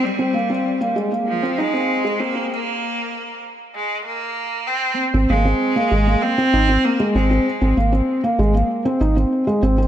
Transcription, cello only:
X:1
M:4/4
L:1/8
Q:1/4=97
K:Ab
V:1 name="Cello"
G,3 z F, A,2 B, | B,3 z A, B,2 C | z A,3 C2 B, A,- | A, z6 z |]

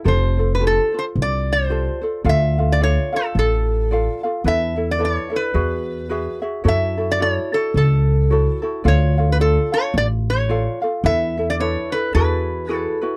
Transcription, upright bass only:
X:1
M:4/4
L:1/8
Q:"Swing" 1/4=109
K:Dlyd
V:1 name="Upright bass" clef=bass
=F,,,4 =C,,4 | D,,4 A,,,4 | E,,4 E,,4 | F,,4 C,,4 |
D,,4 A,,,4 | E,,4 E,,4 |]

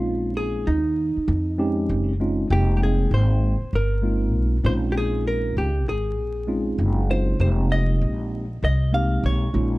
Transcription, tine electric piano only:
X:1
M:4/4
L:1/8
Q:"Swing 16ths" 1/4=98
K:Fm
V:1 name="Tine electric piano"
[A,CDEF]2 z3 [A,CDEG]2 [A,CDEF] | [A,B,CEg]3 z2 [A,B,CEF]2 [A,CDEF]- | [A,CDEF]2 z3 [A,CDEF]2 [A,CDEF] | [G,A,B,CEG]3 z2 [A,B,CEG]2 [A,B,DEF] |]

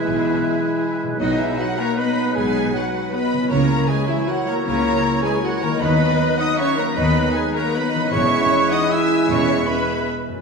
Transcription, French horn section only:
X:1
M:3/4
L:1/8
Q:1/4=154
K:B
V:1 name="French horn section"
E,4- E, z | D, E, F, A, B,2 | G,2 F,2 B,2 | A,2 G, E, F, A, |
A,3 G, F, A, | B,3 D C A, | B,2 G, A, B,2 | C3 D E2 |
C2 B,2 z2 |]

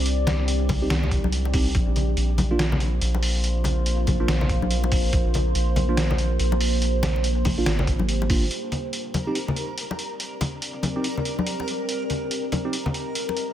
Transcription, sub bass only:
X:1
M:4/4
L:1/8
Q:"Swing 16ths" 1/4=142
K:Cm
V:1 name="Sub bass" clef=bass
C,,4 C,,4 | B,,,2 B,,,4 B,,,2- | B,,,4 B,,,4 | B,,,2 B,,,4 B,,,2- |
B,,,4 A,,,4 | z8 | z8 | z8 |]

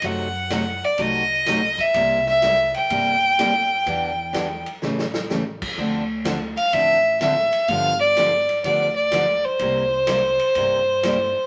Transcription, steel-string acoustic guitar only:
X:1
M:4/4
L:1/8
Q:"Swing" 1/4=126
K:Cmix
V:1 name="Steel-string acoustic guitar"
[C,^F,A,^D^F] z [C,F,A,DF] z [C,F,A,DF] z [C,F,A,DF] z | [C,G,B,EG] z [C,G,B,EG] z [C,G,B,EG] z [C,G,B,EG] z | [E,=B,DG] z [E,B,DG] z [^C,E,A,^CG] z [C,E,A,CG] z | [D,F,CDA] z [D,F,CDA] z [D,F,CDA] z [D,F,CDA] z |
[D,F,=B,DG] z [D,F,B,DG] z [D,F,B,DG] z [D,F,B,DG] z | [C,G,B,EG] z [C,G,B,EG] z [C,G,B,EG] z [C,G,B,EG] z |]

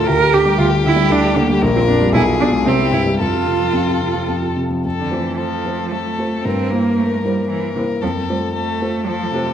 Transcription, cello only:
X:1
M:3/4
L:1/16
Q:1/4=114
K:Gdor
V:1 name="Cello"
B2 G2 F2 E2 D2 B,2 | [K:F] z C D2 E2 D2 C2 E2 | F8 z4 | z D, E,2 F,4 A,4 |
C2 B,2 A,2 G,2 E,2 C,2 | F,2 G,2 A,4 F,2 C,2 |]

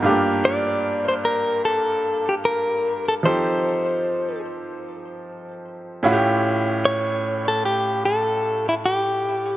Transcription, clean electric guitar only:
X:1
M:4/4
L:1/16
Q:"Swing 16ths" 1/4=75
K:Gm
V:1 name="Clean electric guitar"
z2 d3 c B2 A3 G B3 A | c6 z8 z2 | z2 ^c3 A G2 A3 =E G4 |]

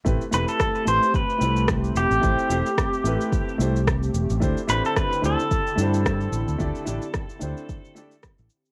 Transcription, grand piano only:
X:1
M:4/4
L:1/16
Q:"Swing 16ths" 1/4=110
K:Am
V:1 name="Grand piano"
[A,CEGB] z [A,CEGB]4 [A,CEGB] z3 [A,CEGB]6 | [A,CEGc]2 [A,CEGc] z3 [A,CEGB]4 [A,CEGc] z4 z | [A,DEGc] z [A,DEGc]4 [A,DEGc] z3 [A,DEGc]6 | [A,DEGd]2 [A,DEGd] z3 [A,DEGc]4 [A,DEGd] z4 z |]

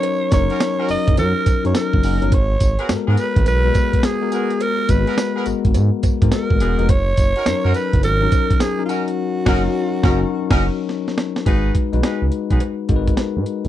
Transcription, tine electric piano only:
X:1
M:4/4
L:1/16
Q:"Swing 16ths" 1/4=105
K:G#m
V:1 name="Tine electric piano"
[F,CDA]2 [F,CDA]4 [F,CDA]4- [F,CDA] [F,CDA]4 [F,CDA] | z4 [G,B,F=A^A]4- [G,B,F=A^A] [G,B,FB]4 [G,B,FA]3- | [G,B,FA]2 [G,B,FB]4 [G,B,FA]4- [G,B,FA] [G,B,FA]4 [G,B,FA] | z4 [F,CDA]4- [F,CDA] [F,CDA]4 [F,CDA]3 |
z2 [F,CDA]2 z2 [F,CDAc']2 z8 | [G,DFB]3 [G,DFB]6- [G,DFB] [G,DFAB]6 |]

